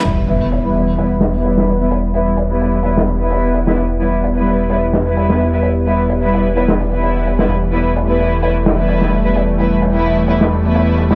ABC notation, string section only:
X:1
M:4/4
L:1/16
Q:"Swing 16ths" 1/4=129
K:Em
V:1 name="String section"
z2 [G,B,EB] z2 [G,B,EB]3 [G,B,EB] z2 [G,B,EB]4 [G,B,EB] | z2 [G,B,EB] z2 [G,B,EB]3 [G,B,EB] z2 [G,B,EB]4 [G,B,EB] | z2 [G,B,EB] z2 [G,B,EB]3 [G,B,EB] z2 [G,B,EB]4 [G,B,EB] | z2 [G,B,EB] z2 [G,B,EB]3 [G,B,EB] z2 [G,B,EB]4 [G,B,EB] |
z2 [G,B,EB] z2 [G,B,EB]3 [G,B,EB] z2 [G,B,EB]4 [G,B,EB] | z2 [G,B,EB] z2 [G,B,EB]3 [G,B,EB] z2 [G,B,EB]4 [G,B,EB] |]